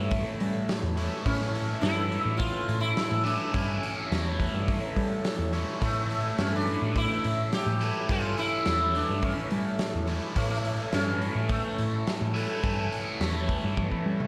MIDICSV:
0, 0, Header, 1, 6, 480
1, 0, Start_track
1, 0, Key_signature, 3, "major"
1, 0, Tempo, 568720
1, 1067, Time_signature, 4, 2, 24, 8
1, 12046, End_track
2, 0, Start_track
2, 0, Title_t, "Transistor combo organ"
2, 0, Program_c, 0, 18
2, 0, Note_on_c, 0, 69, 58
2, 0, Note_on_c, 0, 73, 58
2, 0, Note_on_c, 0, 76, 64
2, 12046, Note_off_c, 0, 69, 0
2, 12046, Note_off_c, 0, 73, 0
2, 12046, Note_off_c, 0, 76, 0
2, 12046, End_track
3, 0, Start_track
3, 0, Title_t, "Sitar"
3, 0, Program_c, 1, 104
3, 1063, Note_on_c, 1, 61, 90
3, 1513, Note_off_c, 1, 61, 0
3, 1530, Note_on_c, 1, 64, 94
3, 1998, Note_off_c, 1, 64, 0
3, 2001, Note_on_c, 1, 65, 101
3, 2363, Note_off_c, 1, 65, 0
3, 2366, Note_on_c, 1, 64, 94
3, 2732, Note_on_c, 1, 62, 83
3, 2750, Note_off_c, 1, 64, 0
3, 2965, Note_off_c, 1, 62, 0
3, 2980, Note_on_c, 1, 61, 78
3, 4634, Note_off_c, 1, 61, 0
3, 4926, Note_on_c, 1, 57, 87
3, 5032, Note_off_c, 1, 57, 0
3, 5060, Note_on_c, 1, 57, 82
3, 5402, Note_off_c, 1, 57, 0
3, 5405, Note_on_c, 1, 61, 90
3, 5523, Note_off_c, 1, 61, 0
3, 5533, Note_on_c, 1, 62, 90
3, 5883, Note_on_c, 1, 64, 91
3, 5894, Note_off_c, 1, 62, 0
3, 6350, Note_off_c, 1, 64, 0
3, 6354, Note_on_c, 1, 67, 89
3, 6799, Note_off_c, 1, 67, 0
3, 6841, Note_on_c, 1, 65, 94
3, 7074, Note_off_c, 1, 65, 0
3, 7077, Note_on_c, 1, 64, 98
3, 7558, Note_on_c, 1, 62, 82
3, 7568, Note_off_c, 1, 64, 0
3, 7797, Note_off_c, 1, 62, 0
3, 7800, Note_on_c, 1, 61, 79
3, 8481, Note_off_c, 1, 61, 0
3, 8745, Note_on_c, 1, 57, 90
3, 8850, Note_off_c, 1, 57, 0
3, 8860, Note_on_c, 1, 57, 89
3, 9199, Note_off_c, 1, 57, 0
3, 9231, Note_on_c, 1, 61, 100
3, 9675, Note_off_c, 1, 61, 0
3, 9702, Note_on_c, 1, 57, 77
3, 10563, Note_off_c, 1, 57, 0
3, 10563, Note_on_c, 1, 58, 77
3, 10740, Note_off_c, 1, 58, 0
3, 10740, Note_on_c, 1, 57, 77
3, 11036, Note_off_c, 1, 57, 0
3, 11036, Note_on_c, 1, 58, 77
3, 11213, Note_off_c, 1, 58, 0
3, 11213, Note_on_c, 1, 57, 77
3, 12046, Note_off_c, 1, 57, 0
3, 12046, End_track
4, 0, Start_track
4, 0, Title_t, "Overdriven electric guitar"
4, 0, Program_c, 2, 29
4, 0, Note_on_c, 2, 45, 86
4, 0, Note_on_c, 2, 52, 73
4, 0, Note_on_c, 2, 57, 79
4, 0, Note_on_c, 2, 61, 81
4, 0, Note_on_c, 2, 64, 91
4, 816, Note_off_c, 2, 64, 0
4, 819, Note_on_c, 2, 64, 80
4, 822, Note_off_c, 2, 61, 0
4, 825, Note_on_c, 2, 61, 71
4, 831, Note_off_c, 2, 57, 0
4, 834, Note_on_c, 2, 57, 65
4, 835, Note_off_c, 2, 45, 0
4, 835, Note_off_c, 2, 52, 0
4, 838, Note_on_c, 2, 52, 68
4, 839, Note_on_c, 2, 45, 64
4, 1052, Note_off_c, 2, 45, 0
4, 1056, Note_on_c, 2, 45, 77
4, 1058, Note_off_c, 2, 52, 0
4, 1061, Note_on_c, 2, 52, 84
4, 1066, Note_off_c, 2, 57, 0
4, 1069, Note_off_c, 2, 61, 0
4, 1070, Note_on_c, 2, 57, 82
4, 1072, Note_on_c, 2, 61, 89
4, 1075, Note_off_c, 2, 64, 0
4, 1078, Note_on_c, 2, 64, 96
4, 2729, Note_off_c, 2, 64, 0
4, 2733, Note_on_c, 2, 64, 70
4, 2741, Note_off_c, 2, 61, 0
4, 2744, Note_on_c, 2, 61, 70
4, 2745, Note_off_c, 2, 52, 0
4, 2745, Note_off_c, 2, 57, 0
4, 2748, Note_on_c, 2, 57, 78
4, 2749, Note_on_c, 2, 52, 67
4, 2753, Note_off_c, 2, 45, 0
4, 2756, Note_on_c, 2, 45, 58
4, 2972, Note_off_c, 2, 45, 0
4, 2975, Note_off_c, 2, 52, 0
4, 2975, Note_on_c, 2, 45, 77
4, 2979, Note_on_c, 2, 52, 80
4, 2981, Note_off_c, 2, 57, 0
4, 2984, Note_off_c, 2, 61, 0
4, 2984, Note_on_c, 2, 57, 79
4, 2988, Note_on_c, 2, 61, 83
4, 2991, Note_off_c, 2, 64, 0
4, 2995, Note_on_c, 2, 64, 89
4, 4663, Note_off_c, 2, 64, 0
4, 4666, Note_on_c, 2, 64, 73
4, 4669, Note_off_c, 2, 61, 0
4, 4672, Note_on_c, 2, 61, 69
4, 4673, Note_off_c, 2, 57, 0
4, 4677, Note_on_c, 2, 57, 69
4, 4681, Note_off_c, 2, 52, 0
4, 4684, Note_on_c, 2, 52, 65
4, 4685, Note_off_c, 2, 45, 0
4, 4689, Note_on_c, 2, 45, 59
4, 4908, Note_off_c, 2, 45, 0
4, 4912, Note_on_c, 2, 45, 84
4, 4916, Note_off_c, 2, 52, 0
4, 4919, Note_on_c, 2, 52, 82
4, 4923, Note_off_c, 2, 57, 0
4, 4923, Note_off_c, 2, 61, 0
4, 4927, Note_on_c, 2, 57, 83
4, 4927, Note_on_c, 2, 61, 85
4, 4931, Note_off_c, 2, 64, 0
4, 4935, Note_on_c, 2, 64, 90
4, 6587, Note_off_c, 2, 64, 0
4, 6591, Note_on_c, 2, 64, 76
4, 6596, Note_off_c, 2, 61, 0
4, 6600, Note_on_c, 2, 61, 73
4, 6604, Note_off_c, 2, 57, 0
4, 6606, Note_off_c, 2, 52, 0
4, 6607, Note_on_c, 2, 57, 68
4, 6609, Note_on_c, 2, 52, 67
4, 6612, Note_off_c, 2, 45, 0
4, 6615, Note_on_c, 2, 45, 62
4, 6832, Note_off_c, 2, 45, 0
4, 6835, Note_on_c, 2, 45, 76
4, 6837, Note_off_c, 2, 52, 0
4, 6840, Note_on_c, 2, 52, 78
4, 6843, Note_off_c, 2, 57, 0
4, 6847, Note_on_c, 2, 57, 79
4, 6849, Note_off_c, 2, 61, 0
4, 6853, Note_on_c, 2, 61, 88
4, 6854, Note_off_c, 2, 64, 0
4, 6857, Note_on_c, 2, 64, 88
4, 8501, Note_off_c, 2, 64, 0
4, 8504, Note_on_c, 2, 64, 82
4, 8506, Note_off_c, 2, 61, 0
4, 8509, Note_on_c, 2, 61, 73
4, 8510, Note_off_c, 2, 57, 0
4, 8513, Note_on_c, 2, 57, 70
4, 8516, Note_off_c, 2, 52, 0
4, 8519, Note_on_c, 2, 52, 67
4, 8521, Note_off_c, 2, 45, 0
4, 8524, Note_on_c, 2, 45, 64
4, 8741, Note_off_c, 2, 45, 0
4, 8744, Note_on_c, 2, 45, 83
4, 8747, Note_off_c, 2, 52, 0
4, 8750, Note_on_c, 2, 52, 79
4, 8755, Note_off_c, 2, 57, 0
4, 8758, Note_on_c, 2, 57, 90
4, 8759, Note_off_c, 2, 64, 0
4, 8760, Note_off_c, 2, 61, 0
4, 8762, Note_on_c, 2, 64, 86
4, 8763, Note_on_c, 2, 61, 83
4, 10414, Note_off_c, 2, 64, 0
4, 10417, Note_on_c, 2, 64, 82
4, 10422, Note_off_c, 2, 61, 0
4, 10425, Note_on_c, 2, 61, 74
4, 10427, Note_off_c, 2, 57, 0
4, 10430, Note_on_c, 2, 57, 66
4, 10432, Note_off_c, 2, 52, 0
4, 10434, Note_off_c, 2, 45, 0
4, 10435, Note_on_c, 2, 52, 62
4, 10438, Note_on_c, 2, 45, 67
4, 10651, Note_off_c, 2, 45, 0
4, 10652, Note_off_c, 2, 52, 0
4, 10654, Note_on_c, 2, 45, 81
4, 10655, Note_on_c, 2, 52, 85
4, 10658, Note_off_c, 2, 57, 0
4, 10661, Note_on_c, 2, 57, 92
4, 10665, Note_off_c, 2, 61, 0
4, 10669, Note_off_c, 2, 64, 0
4, 10669, Note_on_c, 2, 61, 83
4, 10672, Note_on_c, 2, 64, 90
4, 12046, Note_off_c, 2, 45, 0
4, 12046, Note_off_c, 2, 52, 0
4, 12046, Note_off_c, 2, 57, 0
4, 12046, Note_off_c, 2, 61, 0
4, 12046, Note_off_c, 2, 64, 0
4, 12046, End_track
5, 0, Start_track
5, 0, Title_t, "Picked electric bass"
5, 0, Program_c, 3, 34
5, 0, Note_on_c, 3, 43, 91
5, 184, Note_off_c, 3, 43, 0
5, 345, Note_on_c, 3, 55, 86
5, 546, Note_off_c, 3, 55, 0
5, 702, Note_on_c, 3, 40, 84
5, 905, Note_off_c, 3, 40, 0
5, 1066, Note_on_c, 3, 45, 89
5, 1469, Note_off_c, 3, 45, 0
5, 1537, Note_on_c, 3, 43, 91
5, 1844, Note_off_c, 3, 43, 0
5, 1902, Note_on_c, 3, 45, 82
5, 2107, Note_off_c, 3, 45, 0
5, 2266, Note_on_c, 3, 45, 81
5, 2469, Note_off_c, 3, 45, 0
5, 2625, Note_on_c, 3, 45, 79
5, 2829, Note_off_c, 3, 45, 0
5, 2993, Note_on_c, 3, 43, 92
5, 3193, Note_off_c, 3, 43, 0
5, 3472, Note_on_c, 3, 40, 83
5, 3774, Note_off_c, 3, 40, 0
5, 3835, Note_on_c, 3, 43, 92
5, 4035, Note_off_c, 3, 43, 0
5, 4191, Note_on_c, 3, 55, 88
5, 4393, Note_off_c, 3, 55, 0
5, 4545, Note_on_c, 3, 40, 81
5, 4750, Note_off_c, 3, 40, 0
5, 4912, Note_on_c, 3, 45, 85
5, 5314, Note_off_c, 3, 45, 0
5, 5391, Note_on_c, 3, 43, 83
5, 5693, Note_off_c, 3, 43, 0
5, 5755, Note_on_c, 3, 45, 80
5, 5955, Note_off_c, 3, 45, 0
5, 6118, Note_on_c, 3, 45, 80
5, 6317, Note_off_c, 3, 45, 0
5, 6468, Note_on_c, 3, 45, 85
5, 6671, Note_off_c, 3, 45, 0
5, 6834, Note_on_c, 3, 43, 96
5, 7034, Note_off_c, 3, 43, 0
5, 7316, Note_on_c, 3, 40, 84
5, 7615, Note_off_c, 3, 40, 0
5, 7675, Note_on_c, 3, 43, 92
5, 7874, Note_off_c, 3, 43, 0
5, 8033, Note_on_c, 3, 55, 95
5, 8232, Note_off_c, 3, 55, 0
5, 8395, Note_on_c, 3, 40, 83
5, 8593, Note_off_c, 3, 40, 0
5, 8751, Note_on_c, 3, 45, 90
5, 9151, Note_off_c, 3, 45, 0
5, 9228, Note_on_c, 3, 43, 87
5, 9528, Note_off_c, 3, 43, 0
5, 9580, Note_on_c, 3, 45, 82
5, 9784, Note_off_c, 3, 45, 0
5, 9947, Note_on_c, 3, 45, 83
5, 10147, Note_off_c, 3, 45, 0
5, 10307, Note_on_c, 3, 45, 84
5, 10507, Note_off_c, 3, 45, 0
5, 10667, Note_on_c, 3, 43, 94
5, 10866, Note_off_c, 3, 43, 0
5, 11143, Note_on_c, 3, 40, 81
5, 11444, Note_off_c, 3, 40, 0
5, 11512, Note_on_c, 3, 43, 93
5, 11709, Note_off_c, 3, 43, 0
5, 11867, Note_on_c, 3, 55, 93
5, 12046, Note_off_c, 3, 55, 0
5, 12046, End_track
6, 0, Start_track
6, 0, Title_t, "Drums"
6, 91, Note_on_c, 9, 46, 66
6, 97, Note_on_c, 9, 36, 104
6, 175, Note_off_c, 9, 46, 0
6, 181, Note_off_c, 9, 36, 0
6, 339, Note_on_c, 9, 46, 48
6, 424, Note_off_c, 9, 46, 0
6, 581, Note_on_c, 9, 46, 61
6, 585, Note_on_c, 9, 38, 105
6, 666, Note_off_c, 9, 46, 0
6, 669, Note_off_c, 9, 38, 0
6, 821, Note_on_c, 9, 46, 48
6, 905, Note_off_c, 9, 46, 0
6, 1062, Note_on_c, 9, 36, 101
6, 1065, Note_on_c, 9, 46, 61
6, 1147, Note_off_c, 9, 36, 0
6, 1149, Note_off_c, 9, 46, 0
6, 1193, Note_on_c, 9, 38, 29
6, 1277, Note_off_c, 9, 38, 0
6, 1310, Note_on_c, 9, 46, 47
6, 1394, Note_off_c, 9, 46, 0
6, 1543, Note_on_c, 9, 46, 56
6, 1547, Note_on_c, 9, 38, 98
6, 1628, Note_off_c, 9, 46, 0
6, 1631, Note_off_c, 9, 38, 0
6, 1788, Note_on_c, 9, 46, 42
6, 1872, Note_off_c, 9, 46, 0
6, 2021, Note_on_c, 9, 46, 59
6, 2024, Note_on_c, 9, 36, 102
6, 2105, Note_off_c, 9, 46, 0
6, 2108, Note_off_c, 9, 36, 0
6, 2268, Note_on_c, 9, 46, 45
6, 2352, Note_off_c, 9, 46, 0
6, 2505, Note_on_c, 9, 46, 65
6, 2508, Note_on_c, 9, 38, 106
6, 2589, Note_off_c, 9, 46, 0
6, 2593, Note_off_c, 9, 38, 0
6, 2753, Note_on_c, 9, 46, 48
6, 2837, Note_off_c, 9, 46, 0
6, 2989, Note_on_c, 9, 46, 66
6, 2990, Note_on_c, 9, 36, 99
6, 3073, Note_off_c, 9, 46, 0
6, 3074, Note_off_c, 9, 36, 0
6, 3233, Note_on_c, 9, 46, 48
6, 3317, Note_off_c, 9, 46, 0
6, 3477, Note_on_c, 9, 46, 60
6, 3480, Note_on_c, 9, 38, 93
6, 3561, Note_off_c, 9, 46, 0
6, 3564, Note_off_c, 9, 38, 0
6, 3711, Note_on_c, 9, 36, 70
6, 3714, Note_on_c, 9, 46, 47
6, 3796, Note_off_c, 9, 36, 0
6, 3798, Note_off_c, 9, 46, 0
6, 3952, Note_on_c, 9, 36, 98
6, 3953, Note_on_c, 9, 46, 64
6, 4036, Note_off_c, 9, 36, 0
6, 4038, Note_off_c, 9, 46, 0
6, 4190, Note_on_c, 9, 36, 78
6, 4191, Note_on_c, 9, 46, 52
6, 4274, Note_off_c, 9, 36, 0
6, 4276, Note_off_c, 9, 46, 0
6, 4427, Note_on_c, 9, 46, 66
6, 4430, Note_on_c, 9, 38, 97
6, 4512, Note_off_c, 9, 46, 0
6, 4515, Note_off_c, 9, 38, 0
6, 4670, Note_on_c, 9, 46, 50
6, 4754, Note_off_c, 9, 46, 0
6, 4909, Note_on_c, 9, 46, 61
6, 4910, Note_on_c, 9, 36, 93
6, 4994, Note_off_c, 9, 46, 0
6, 4995, Note_off_c, 9, 36, 0
6, 5152, Note_on_c, 9, 46, 49
6, 5236, Note_off_c, 9, 46, 0
6, 5387, Note_on_c, 9, 46, 56
6, 5390, Note_on_c, 9, 38, 102
6, 5471, Note_off_c, 9, 46, 0
6, 5475, Note_off_c, 9, 38, 0
6, 5630, Note_on_c, 9, 46, 45
6, 5714, Note_off_c, 9, 46, 0
6, 5872, Note_on_c, 9, 36, 106
6, 5873, Note_on_c, 9, 46, 60
6, 5956, Note_off_c, 9, 36, 0
6, 5957, Note_off_c, 9, 46, 0
6, 6113, Note_on_c, 9, 46, 50
6, 6197, Note_off_c, 9, 46, 0
6, 6351, Note_on_c, 9, 46, 63
6, 6354, Note_on_c, 9, 38, 105
6, 6435, Note_off_c, 9, 46, 0
6, 6438, Note_off_c, 9, 38, 0
6, 6592, Note_on_c, 9, 46, 50
6, 6677, Note_off_c, 9, 46, 0
6, 6827, Note_on_c, 9, 46, 62
6, 6831, Note_on_c, 9, 36, 98
6, 6911, Note_off_c, 9, 46, 0
6, 6915, Note_off_c, 9, 36, 0
6, 7068, Note_on_c, 9, 46, 47
6, 7152, Note_off_c, 9, 46, 0
6, 7304, Note_on_c, 9, 46, 64
6, 7308, Note_on_c, 9, 38, 89
6, 7389, Note_off_c, 9, 46, 0
6, 7392, Note_off_c, 9, 38, 0
6, 7552, Note_on_c, 9, 46, 44
6, 7636, Note_off_c, 9, 46, 0
6, 7785, Note_on_c, 9, 46, 61
6, 7788, Note_on_c, 9, 36, 99
6, 7869, Note_off_c, 9, 46, 0
6, 7873, Note_off_c, 9, 36, 0
6, 8022, Note_on_c, 9, 46, 48
6, 8107, Note_off_c, 9, 46, 0
6, 8262, Note_on_c, 9, 46, 70
6, 8265, Note_on_c, 9, 38, 106
6, 8346, Note_off_c, 9, 46, 0
6, 8350, Note_off_c, 9, 38, 0
6, 8500, Note_on_c, 9, 46, 50
6, 8585, Note_off_c, 9, 46, 0
6, 8742, Note_on_c, 9, 46, 67
6, 8745, Note_on_c, 9, 36, 103
6, 8827, Note_off_c, 9, 46, 0
6, 8830, Note_off_c, 9, 36, 0
6, 8986, Note_on_c, 9, 46, 51
6, 9071, Note_off_c, 9, 46, 0
6, 9220, Note_on_c, 9, 46, 58
6, 9223, Note_on_c, 9, 38, 99
6, 9304, Note_off_c, 9, 46, 0
6, 9308, Note_off_c, 9, 38, 0
6, 9466, Note_on_c, 9, 46, 47
6, 9550, Note_off_c, 9, 46, 0
6, 9698, Note_on_c, 9, 46, 59
6, 9702, Note_on_c, 9, 36, 98
6, 9782, Note_off_c, 9, 46, 0
6, 9786, Note_off_c, 9, 36, 0
6, 9945, Note_on_c, 9, 46, 44
6, 10030, Note_off_c, 9, 46, 0
6, 10188, Note_on_c, 9, 46, 61
6, 10191, Note_on_c, 9, 38, 99
6, 10272, Note_off_c, 9, 46, 0
6, 10276, Note_off_c, 9, 38, 0
6, 10431, Note_on_c, 9, 46, 50
6, 10515, Note_off_c, 9, 46, 0
6, 10665, Note_on_c, 9, 36, 106
6, 10668, Note_on_c, 9, 46, 58
6, 10749, Note_off_c, 9, 36, 0
6, 10752, Note_off_c, 9, 46, 0
6, 10907, Note_on_c, 9, 46, 46
6, 10992, Note_off_c, 9, 46, 0
6, 11147, Note_on_c, 9, 46, 60
6, 11150, Note_on_c, 9, 38, 98
6, 11231, Note_off_c, 9, 46, 0
6, 11234, Note_off_c, 9, 38, 0
6, 11385, Note_on_c, 9, 36, 73
6, 11385, Note_on_c, 9, 46, 46
6, 11469, Note_off_c, 9, 36, 0
6, 11469, Note_off_c, 9, 46, 0
6, 11624, Note_on_c, 9, 48, 53
6, 11625, Note_on_c, 9, 36, 99
6, 11708, Note_off_c, 9, 48, 0
6, 11709, Note_off_c, 9, 36, 0
6, 11744, Note_on_c, 9, 36, 53
6, 11829, Note_off_c, 9, 36, 0
6, 11987, Note_on_c, 9, 47, 60
6, 12046, Note_off_c, 9, 47, 0
6, 12046, End_track
0, 0, End_of_file